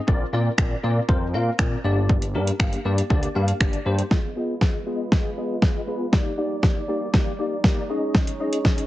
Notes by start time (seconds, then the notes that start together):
0.07 A#1 C4 F4 A#4 D5, kick
0.33 A#2 C4 F4 A#4 D5
0.58 A#1 C4 F4 A#4 D5, finger snap, kick
0.83 A#2 C4 F4 A#4 D5
1.09 F2 C4 F4 A#4 C5, kick
1.34 A#2 C4 F4 A#4 F5
1.59 A#1 C4 F4 A#4 D5, finger snap, kick
1.84 G1 A#3 D4 G4 D5
2.09 kick
2.22 closed hi-hat
2.34 G2 A#3 D4 G4 A#4
2.47 closed hi-hat
2.60 G1 A#3 D4 G4 F5, finger snap, kick
2.73 closed hi-hat
2.85 G2 A#3 D4 G4 D5
2.98 closed hi-hat
3.10 D2 A#3 D4 G4 D5, kick
3.23 closed hi-hat
3.35 G2 A#3 D4 G4 F5
3.48 closed hi-hat
3.60 G1 A#3 D4 G4 D5, finger snap, kick
3.73 closed hi-hat
3.85 G2 A#3 D4 G4 C5
3.99 closed hi-hat
4.11 G#3 B3 F4 G#4 B4 D#5, kick, snare
4.36 B3 F4 G#4 D#5
4.61 B3 F4 G#4, kick, snare
4.86 B3 F4 G#4 D#5
5.11 B3 F4 G#4 D#5, kick, snare
5.37 B3 F4 G#4 D#5
5.62 B3 F4 G#4 D#5, kick, snare
5.87 B3 F4 G#4 B4
6.12 G3 A#3 D#4 G4 D5, kick, snare
6.37 A#3 D#4 G4 D5
6.63 A#3 D#4 G4 D5, kick, snare
6.88 A#3 D#4 G4 D5
7.13 A#3 D#4 G4 D5, kick, snare
7.39 A#3 D#4 G4 D5
7.64 A#3 D#4 G4 D5, kick, snare
7.89 G#3 C#4 D#4 G#4 C#5 D#5
8.15 kick, snare
8.27 closed hi-hat
8.40 C#4 D#4 G#4 D#5
8.53 closed hi-hat
8.65 C#4 D#4 G#4 D#5, kick, snare
8.78 closed hi-hat